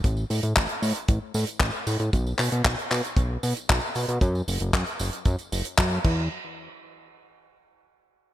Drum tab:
CC |----------------|----------------|--------------x-|----------------|
HH |x-oxxxoxx-oxx-ox|x-oxxxoxx-oxx-ox|x-oxxxoxxxoxx---|----------------|
TB |xxxxxxxxx-xxxxxx|xxxxxxxxx-xxxxxx|xxxxxxxxxxxxxx--|----------------|
CP |----x-------x---|--x-x-x-----x---|----x-------x---|----------------|
BD |o---o---o---o---|o---o---o---o---|o---o---o---o-o-|----------------|